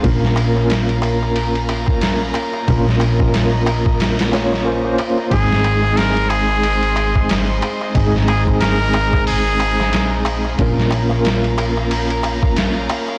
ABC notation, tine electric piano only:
X:1
M:4/4
L:1/16
Q:"Swing 16ths" 1/4=91
K:Abmix
V:1 name="Tine electric piano"
[B,DFB]3 [B,DFB]12- [B,DFB] | [B,DFB]3 [B,DFB]6- [B,DFB] [B,DFd]2 [B,DFc] [B,DFc]3 | [A,CEA]3 [A,CEA]12- [A,CEA] | [A,CEA]3 [A,CEA]12- [A,CEA] |
[B,DFB]3 [B,DFB]12- [B,DFB] |]